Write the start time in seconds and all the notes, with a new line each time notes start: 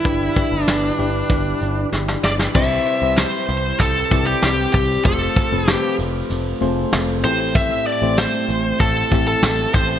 Already playing: D3 G3 D4 E4 G4 B4
0.04 G1 G2 D4 E4 G4 B4, kick, closed hi-hat
0.35 D4 E4 G4 B4, kick, closed hi-hat
0.52 G1
0.63 D4
0.68 G1, snare, closed hi-hat, tambourine
0.98 G1 D4 E4 G4 B4, closed hi-hat
1.30 G1, kick, closed hi-hat
1.61 G1, closed hi-hat
1.93 G1, snare
2.08 snare
2.24 G1 D5, snare
2.39 snare
2.54 C2 C3 G3 C4 E4 G4 B4 C5 E5, kick, crash
2.58 C4
2.86 closed hi-hat
3.01 C2 C4 E4 G4 C5 B5
3.17 C5, snare, closed hi-hat, tambourine
3.49 C2, closed hi-hat
3.80 C2 C3 G3 C4 A4, kick, closed hi-hat
4.11 C2 C4 E4 G4 B4 D5, kick, closed hi-hat
4.27 G4
4.42 C2 C3 G3 C4, snare, closed hi-hat, tambourine
4.73 C2 G4, kick, closed hi-hat
5.05 F1 F2 C3 F3 A3 C4 F4 A4 C5, kick, closed hi-hat
5.21 closed hi-hat
5.36 kick, closed hi-hat
5.52 F1 A3 C4 F4 A4 B4
5.67 G4, snare, closed hi-hat, tambourine
5.99 F1 C3 F3, closed hi-hat
6.29 F1 F2 C3 F3, closed hi-hat
6.61 F1 A3 C4 F4 G#4 C5, closed hi-hat
6.68 A4
6.92 F1 F2 C3 F3, snare, closed hi-hat, tambourine
7.08 closed hi-hat
7.23 A1 A2 E3 A3 C4 E4 G4 A4 C5, closed hi-hat
7.27 A2
7.55 E5, kick, closed hi-hat
7.86 D5, closed hi-hat
8.01 A1 A3 C4 E4 G4 C5
8.18 C5, snare, closed hi-hat, tambourine
8.49 A1, closed hi-hat
8.80 A1 A2 E3 A3 A4, kick, closed hi-hat
9.11 A1 A3 C4 E4 G4 A4, kick, closed hi-hat
9.28 A4
9.42 A1 A2 E3 A3, snare, closed hi-hat, tambourine
9.74 A1 C5, kick, closed hi-hat